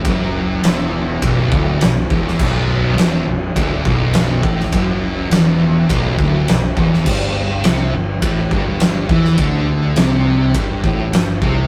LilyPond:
<<
  \new Staff \with { instrumentName = "Distorted electric guitar" } { \clef bass \time 4/4 \key b \phrygian \tempo 4 = 103 fis,4 e,4 b,,8 d,8 b,,8 e,8 | b,,4 e,8 b,,8 d,8 b,,4 a,8 | fis,4 e,4 b,,8 d,8 b,,8 e,8 | g,4 c8 g,8 a,8 g,4 e8 |
d4 c4 g,8 a,8 g,8 c8 | }
  \new Staff \with { instrumentName = "Fingered electric bass" } { \clef bass \time 4/4 \key b \phrygian fis,,4 e,,4 b,,,8 d,,8 b,,,8 e,,8 | b,,,4 e,,8 b,,,8 d,,8 b,,,4 a,,8 | fis,,4 e,,4 b,,,8 d,,8 b,,,8 e,,8 | g,,4 c,8 g,,8 a,,8 g,,4 e,8 |
d,4 c,4 g,,8 a,,8 g,,8 c,8 | }
  \new DrumStaff \with { instrumentName = "Drums" } \drummode { \time 4/4 <bd rb>4 <rb sn>4 <bd rb>8 bd8 <rb sn>8 bd16 sn16 | <cymc bd>4 <rb sn>4 <bd rb>8 bd8 <rb sn>8 bd16 sn16 | <bd rb>4 <rb sn>4 <bd rb>8 bd8 <rb sn>8 bd16 sn16 | <cymc bd>4 <rb sn>4 <bd rb>8 bd8 <rb sn>8 bd16 sn16 |
<bd rb>4 <rb sn>4 <bd rb>8 bd8 <rb sn>8 bd8 | }
>>